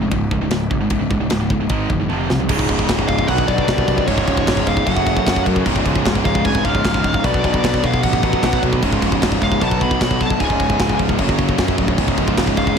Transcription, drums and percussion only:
0.11 kick loud
0.11 ride bell medium
0.31 kick medium
0.51 snare loud
0.51 ride bell medium
0.71 kick medium
0.90 kick loud
0.90 ride bell medium
1.11 kick medium
1.30 snare loud
1.30 ride bell medium
1.50 kick medium
1.69 kick loud
1.69 ride bell medium
1.90 kick medium
2.10 high tom medium
2.30 snare medium
2.49 kick medium
2.49 crash loud
2.49 crash medium
2.59 kick medium
2.69 kick medium
2.69 crash medium
2.79 kick medium
2.89 kick loud
2.89 snare loud
2.89 crash medium
2.99 kick medium
3.08 kick medium
3.08 crash medium
3.19 kick medium
3.28 kick medium
3.28 crash medium
3.38 kick medium
3.48 kick medium
3.48 crash medium
3.58 kick medium
3.68 kick medium
3.68 snare loud
3.68 crash medium
3.78 kick loud
3.88 kick medium
3.88 crash medium
3.98 kick medium
4.08 kick medium
4.08 crash medium
4.18 kick medium
4.28 kick medium
4.28 crash medium
4.37 kick medium
4.47 kick loud
4.47 snare loud
4.47 crash loud
4.57 kick medium
4.67 kick medium
4.67 crash medium
4.77 kick medium
4.87 kick medium
4.87 crash medium
4.97 kick medium
5.07 kick medium
5.07 crash medium
5.17 kick loud
5.26 kick medium
5.26 snare loud
5.26 crash medium
5.36 kick medium
5.46 kick medium
5.46 crash medium
5.56 kick medium
5.66 kick medium
5.66 crash medium
5.76 kick medium
5.86 kick medium
5.86 crash medium
5.96 kick medium
6.05 kick loud
6.05 snare loud
6.05 crash medium
6.15 kick medium
6.25 kick medium
6.25 crash medium
6.35 kick medium
6.45 kick medium
6.45 crash medium
6.55 kick medium
6.65 kick medium
6.65 crash medium
6.75 kick loud
6.85 kick medium
6.85 snare loud
6.85 crash medium
6.94 kick medium
7.04 kick medium
7.04 crash medium
7.14 kick medium
7.24 kick loud
7.24 crash medium
7.34 kick medium
7.44 kick medium
7.44 crash medium
7.54 kick medium
7.64 kick medium
7.64 snare loud
7.64 crash loud
7.74 kick medium
7.84 kick medium
7.84 crash medium
7.94 kick medium
8.03 kick medium
8.03 crash loud
8.13 kick medium
8.23 kick medium
8.23 crash medium
8.33 kick medium
8.43 kick medium
8.43 snare loud
8.43 crash medium
8.53 kick loud
8.63 kick medium
8.63 crash medium
8.73 kick medium
8.83 kick medium
8.83 crash medium
8.93 kick medium
9.02 kick medium
9.02 crash medium
9.12 kick medium
9.22 kick loud
9.22 snare loud
9.22 crash medium
9.32 kick medium
9.42 kick medium
9.42 crash medium
9.52 kick medium
9.61 kick medium
9.61 crash medium
9.71 kick medium
9.81 kick medium
9.81 crash medium
9.91 kick medium
10.01 kick loud
10.01 snare loud
10.01 crash medium
10.11 kick medium
10.21 kick medium
10.21 crash medium
10.30 kick medium
10.40 kick medium
10.40 crash medium
10.50 kick medium
10.60 kick medium
10.60 crash medium
10.70 kick medium
10.79 kick loud
10.79 snare loud
10.79 crash medium
10.89 kick medium
10.99 kick medium
10.99 crash medium
11.09 kick medium
11.18 kick medium
11.18 crash medium
11.29 kick medium
11.38 kick medium
11.38 crash medium
11.49 kick medium
11.58 kick medium
11.58 snare loud
11.58 crash medium
11.68 kick medium
11.78 kick medium
11.78 crash medium
11.88 kick medium
11.98 kick medium
11.98 crash loud
12.08 kick medium
12.18 kick medium
12.18 crash medium
12.28 kick medium
12.37 kick loud
12.37 snare loud
12.37 crash medium
12.47 kick medium
12.57 kick medium
12.57 crash medium
12.67 kick medium

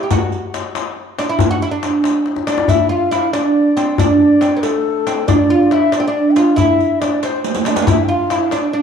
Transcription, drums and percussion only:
0.10 riq medium
0.10 tombak dum medium
0.32 riq soft
0.32 tombak ka soft
0.54 riq soft
0.54 tombak tek medium
0.75 riq soft
0.75 tombak tek medium
1.19 riq soft
1.19 tombak tek medium
1.39 riq medium
1.39 tombak dum loud
1.61 riq soft
1.61 tombak ka soft
1.83 riq soft
1.83 tombak tek medium
2.04 riq medium
2.04 tombak tek medium
2.26 tombak tek medium
2.36 tombak ka medium
2.47 riq medium
2.47 tombak tek medium
2.58 tombak ka medium
2.68 riq medium
2.68 tombak dum medium
2.91 tombak ka soft
3.12 riq medium
3.12 tombak tek medium
3.33 riq soft
3.33 tombak tek medium
3.77 riq soft
3.77 tombak tek medium
3.98 riq medium
3.98 tombak dum loud
4.20 tombak ka soft
4.41 riq soft
4.41 tombak tek medium
4.63 riq medium
4.63 tombak tek medium
5.07 riq medium
5.07 tombak tek medium
5.28 riq medium
5.28 tombak dum medium
5.71 tombak tek medium
5.92 riq medium
5.92 tombak tek medium
6.36 riq medium
6.36 tombak tek medium
6.58 riq medium
6.58 tombak dum medium
6.79 riq soft
6.79 tombak ka soft
7.02 riq soft
7.02 tombak tek medium
7.23 riq soft
7.23 tombak tek medium
7.44 riq medium
7.44 tombak tek medium
7.54 riq medium
7.54 tombak ka medium
7.65 riq medium
7.65 tombak tek medium
7.76 riq medium
7.76 tombak ka medium
7.87 riq medium
7.87 tombak dum loud
8.09 tombak ka soft
8.30 riq soft
8.30 tombak tek medium
8.51 riq medium
8.51 tombak tek medium

